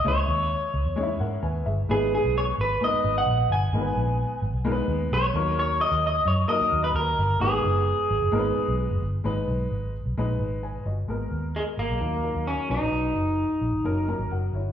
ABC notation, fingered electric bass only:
X:1
M:4/4
L:1/16
Q:1/4=130
K:G#m
V:1 name="Fingered electric bass" clef=bass
C,,2 D,,3 z C,, E,,3 G,,2 D,,2 =G,,,2 | G,,,3 B,,,3 G,,,2 z2 G,,,2 A,,,2 =G,,,2 | G,,,2 A,,,3 z G,,, B,,,3 D,,2 B,,,2 D,,2- | D,,3 D,,3 F,,2 z2 D,,2 D,,2 =G,,,2 |
G,,,2 F,,,3 z G,,, F,,, G,,,2 z B,,,2 F,,, =G,,,2 | G,,,2 B,,,2 G,,,3 B,,, A,,,2 G,,,4 =G,,,2 | G,,,2 D,,3 z G,,, B,,, D,,3 D,,2 z B,,, A,,, | B,,,2 F,,,3 z A,,, G,,, F,,,3 G,,, F,,,2 =G,,,2 |]